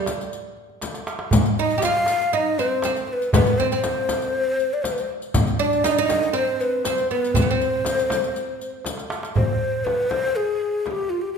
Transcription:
0.06 riq, darbuka tek, frame drum
0.19 riq, darbuka ka
0.32 riq, darbuka ka
0.57 darbuka ka
0.70 darbuka ka
0.81 riq, darbuka tek, frame drum
0.94 riq, darbuka ka
1.07 riq, darbuka tek
1.19 darbuka ka
1.31 riq, darbuka dum, frame drum
1.43 riq, darbuka ka
1.59 D#4 D#5
1.69 riq, darbuka ka
1.78 G4
1.82 F4 F5, riq, darbuka tek, frame drum
2.06 riq, darbuka tek
2.20 riq, darbuka ka
2.32 D#4 D#5, darbuka ka
2.58 C4 C5, riq, darbuka ka
2.82 C4, riq, darbuka tek, frame drum
2.96 riq
3.08 C5
3.13 B4
3.22 riq
3.33 B3 B4, riq, darbuka dum, frame drum
3.46 riq, darbuka ka
3.58 C4 C5
3.71 C4 C5, riq, darbuka ka
3.84 riq, darbuka tek, frame drum
4.09 riq, darbuka tek, frame drum
4.22 riq
4.34 darbuka ka
4.59 riq, darbuka ka
4.74 D5
4.83 C5, riq, darbuka tek, frame drum
4.92 B4
4.98 C5, riq
5.22 riq
5.34 riq, frame drum, darbuka dum
5.47 riq
5.59 D4 D5
5.72 riq, darbuka ka
5.84 D#4 D#5, riq, darbuka tek, frame drum
5.91 D5
5.98 D#4 D#5
6.09 riq, darbuka tek, frame drum
6.22 riq, darbuka ka
6.33 C4 C5, darbuka ka
6.60 B4, riq, darbuka ka
6.85 C4 C5, riq, darbuka tek, frame drum
6.98 riq
7.11 B3 B4
7.24 riq
7.34 C4 C5, riq, darbuka dum, frame drum
7.42 B3
7.51 C4
7.60 riq, darbuka ka
7.72 darbuka ka
7.85 riq, darbuka tek, frame drum
7.98 riq, darbuka ka
8.10 riq, darbuka tek, frame drum
8.23 riq, darbuka ka
8.36 riq
8.60 riq, darbuka ka
8.73 darbuka ka
8.85 riq, darbuka tek, frame drum
8.97 riq, darbuka ka
9.10 riq, darbuka tek
9.23 riq, darbuka ka
9.36 C5, darbuka dum, frame drum
9.49 darbuka ka
9.85 B4, darbuka tek, frame drum
9.99 darbuka ka
10.10 C5, darbuka tek, frame drum
10.36 G#4
10.61 darbuka ka
10.86 G#4, darbuka tek, frame drum
10.91 G4
10.99 darbuka ka
11.10 F4, darbuka ka
11.21 G4, darbuka ka
11.33 G4

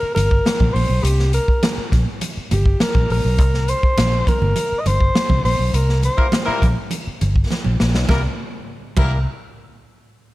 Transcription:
Already playing: A#4
0.03 muted fingered electric bass stroke
0.15 G1 A#4, closed hi-hat, muted conga
0.31 kick
0.46 snare, closed hi-hat, high conga
0.60 A#1, kick, high conga
0.73 A#1 C5, open hi-hat
0.89 B1
1.04 C2 G4, closed hi-hat
1.19 snare
1.33 A#4, closed hi-hat
1.48 kick
1.63 snare, closed hi-hat, high conga
1.78 muted fingered electric bass stroke
1.92 A#1, kick, snare, closed hi-hat, muted conga
2.21 closed hi-hat, muted conga
2.37 muted fingered electric bass stroke
2.51 G1 G4, closed hi-hat, muted conga, low conga
2.66 kick
2.80 A#4, snare, closed hi-hat, high conga
2.95 A#1, kick, high conga
3.10 A#1 A#4, open hi-hat
3.25 B1
3.38 C2, kick, closed hi-hat
3.54 snare
3.68 C5, closed hi-hat
3.83 kick
3.98 A#1, snare, closed hi-hat, high conga
4.27 A#4, kick, closed hi-hat, muted conga
4.42 G1, low conga
4.56 closed hi-hat, muted conga
4.72 muted fingered electric bass stroke
4.80 D#5
4.86 G1 C5, closed hi-hat, muted conga
5.00 kick
5.15 snare, closed hi-hat, high conga
5.29 C2, kick, high conga
5.45 A#1 C5, open hi-hat
5.59 B1
5.74 C2 A#4, closed hi-hat
5.89 snare
6.03 C5, closed hi-hat, muted conga
6.17 G3 A#3 E4 A#4, kick
6.32 snare, closed hi-hat, high conga
6.46 G3 A#3 E4 A#4, muted fingered electric bass stroke
6.62 A#1, kick, closed hi-hat, muted conga
6.91 closed hi-hat, muted conga
7.07 muted fingered electric bass stroke
7.21 G1, closed hi-hat, muted conga
7.36 kick
7.50 snare, high conga
7.64 A#1, high conga
7.80 A#1, snare
7.95 B1, snare
8.09 C2 G3 A#3 E4 A#4, kick, snare, muted conga
8.97 C2 G3 A#3 E4 A#4, kick, crash, muted conga

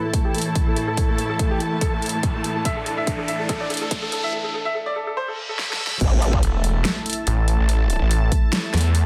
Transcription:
Already playing: A2 E3 E4 A4 A5, riser
0.04 A3
0.13 A3, kick, closed hi-hat
0.25 G4
0.35 A3, closed hi-hat
0.38 closed hi-hat
0.42 closed hi-hat
0.46 A3
0.55 kick, closed hi-hat
0.67 A3
0.76 A3, closed hi-hat
0.88 A4
0.97 A3, kick, closed hi-hat
1.09 A3
1.18 A3, closed hi-hat
1.30 A4
1.39 A3, kick, closed hi-hat
1.51 G4
1.60 A3, closed hi-hat
1.72 A3
1.81 A4, kick, closed hi-hat
1.93 A3
2.02 closed hi-hat
2.06 closed hi-hat
2.09 closed hi-hat
2.14 A3
2.23 kick, closed hi-hat
2.35 A3
2.44 A3, closed hi-hat
2.56 A3
2.65 D4 E5, kick, closed hi-hat
2.77 A4
2.86 A4, closed hi-hat
2.98 E5
3.07 A4, kick, closed hi-hat
3.18 A4
3.28 E5, closed hi-hat
3.39 A4
3.49 A4, kick, closed hi-hat
3.60 D5
3.70 A4, closed hi-hat
3.74 closed hi-hat
3.77 closed hi-hat
3.81 A4
3.91 kick, closed hi-hat
4.02 A4
4.12 A4, closed hi-hat
4.23 E5
4.33 A4
4.44 A4
4.54 A4
4.65 E5
4.75 A4
4.86 D5
4.96 A4
5.07 A4
5.17 C5, reverse cymbal
5.28 A4
5.49 A4
5.59 snare
5.70 A4, snare
5.80 A4
5.87 snare
5.91 A4
6.01 A1 A3 E4 E5 A5, kick, closed hi-hat, crash, impact
6.22 closed hi-hat
6.33 kick
6.43 E1, closed hi-hat
6.64 closed hi-hat
6.85 snare, closed hi-hat
7.06 closed hi-hat
7.10 closed hi-hat
7.13 closed hi-hat
7.27 A1, closed hi-hat
7.48 closed hi-hat
7.59 A1
7.69 closed hi-hat
7.90 closed hi-hat
8.01 A1
8.11 closed hi-hat
8.32 kick, closed hi-hat
8.53 snare, closed hi-hat
8.74 E2, snare, closed hi-hat
8.77 closed hi-hat
8.81 closed hi-hat
8.95 closed hi-hat

